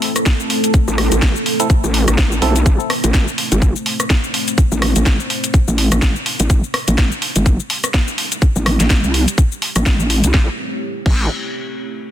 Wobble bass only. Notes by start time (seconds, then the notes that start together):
0.88 A1
1.12 A1
1.84 A1
2.08 A1
2.42 B1
2.66 A1
3.04 A1
3.52 G1
4.72 A1
4.96 A1
5.68 A1
5.92 A1
6.40 A1
6.50 A1
6.88 A1
7.36 G1
8.56 A1
8.80 A1
9.04 C2
9.76 A1
10.24 C2
10.34 A1
11.06 A1